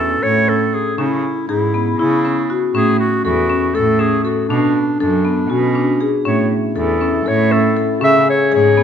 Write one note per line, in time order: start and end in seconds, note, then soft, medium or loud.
0.00 0.16 C#4 medium
0.00 0.25 A4 medium
0.22 0.79 A2 medium
0.22 0.41 A4 medium
0.22 0.50 C#5 medium
0.48 0.66 C#4 medium
0.48 0.75 A4 medium
0.73 0.97 G#4 medium
0.73 0.91 A4 medium
0.98 1.17 C#3 medium
0.98 1.34 C#4 medium
0.98 1.45 E4 medium
1.48 1.87 G#2 medium
1.48 1.95 E4 medium
1.48 1.67 G#4 medium
1.74 1.92 B3 medium
1.99 2.56 C#3 medium
1.99 2.52 E4 medium
1.99 2.17 E4 medium
2.25 2.42 C#4 medium
2.50 2.68 F#4 medium
2.74 2.93 A2 medium
2.74 3.10 C#4 medium
2.74 2.98 G#4 medium
2.99 3.23 F#4 medium
3.25 3.63 E2 medium
3.25 3.76 F#4 medium
3.25 3.43 A4 medium
3.50 3.68 C#4 medium
3.75 4.32 A2 medium
3.75 4.01 A4 medium
3.75 3.93 A4 medium
3.99 4.17 C#4 medium
3.99 4.24 G#4 medium
4.24 4.48 F#4 medium
4.24 4.43 A4 medium
4.49 4.69 B2 medium
4.49 4.96 D4 medium
4.49 4.86 D4 medium
5.00 5.38 F#2 medium
5.00 5.53 D4 medium
5.00 5.18 A4 medium
5.25 5.43 B3 medium
5.50 6.07 B2 medium
5.50 6.07 C#4 medium
5.50 5.68 F#4 medium
5.75 5.93 D4 medium
6.01 6.18 G#4 medium
6.25 6.45 A2 medium
6.25 6.61 C#4 medium
6.25 8.04 E4 medium
6.25 6.50 C#5 medium
6.76 7.14 E2 medium
6.76 6.94 A4 medium
6.76 7.29 A4 medium
7.01 7.19 C#4 medium
7.26 7.83 A2 medium
7.26 7.44 A4 medium
7.26 7.53 C#5 medium
7.51 7.69 C#4 medium
7.51 7.77 A4 medium
7.77 7.94 A4 medium
8.01 8.20 C#3 medium
8.01 8.37 C#4 medium
8.01 8.83 G#4 medium
8.01 8.26 E5 loud
8.30 8.51 C#5 medium
8.52 8.83 G#2 medium
8.52 8.69 G#4 medium
8.52 8.83 C#5 medium
8.77 8.83 B3 medium